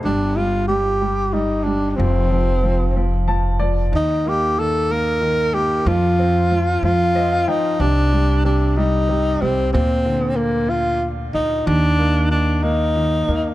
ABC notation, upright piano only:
X:1
M:6/8
L:1/16
Q:3/8=62
K:Eblyd
V:1 name="Upright piano"
z12 | z8 a2 d2 | z12 | z8 e f g2 |
z12 | z12 | z12 |]
V:2 name="Upright piano" clef=bass
G,2 G,2 G,2 G,2 G,2 G,2 | F,2 F,2 F,2 F,2 F,2 F,2 | E,2 B,2 E,2 B,2 E,2 B,2 | F,2 C2 F,2 F,2 C2 F,2 |
C,2 G,2 C,2 G,2 C,2 G,2 | B,,2 D,8 z2 | E,2 B,2 E,2 B,2 E,2 B,2 |]